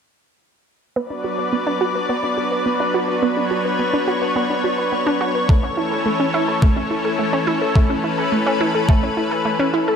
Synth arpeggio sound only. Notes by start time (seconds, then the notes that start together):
0.96 B3
1.10 D4
1.24 F#4
1.39 B4
1.53 B3
1.67 D4
1.81 F#4
1.95 B4
2.09 B3
2.23 D4
2.37 F#4
2.52 B4
2.66 B3
2.80 D4
2.94 F#4
3.08 B4
3.22 B3
3.37 D4
3.51 F#4
3.65 B4
3.79 B3
3.93 D4
4.08 F#4
4.22 B4
4.36 B3
4.50 D4
4.64 F#4
4.78 B4
4.92 B3
5.07 D4
5.21 F#4
5.35 B4
5.49 A3
5.63 C#4
5.77 E4
5.92 A4
6.06 A3
6.20 C#4
6.34 E4
6.48 A4
6.62 A3
6.76 C#4
6.91 E4
7.05 A4
7.19 A3
7.33 C#4
7.47 E4
7.61 A4
7.75 A3
7.90 C#4
8.04 E4
8.18 A4
8.32 A3
8.46 C#4
8.61 E4
8.75 A4
8.89 A3
9.03 C#4
9.17 E4
9.31 A4
9.45 A3
9.59 C#4
9.74 E4
9.88 A4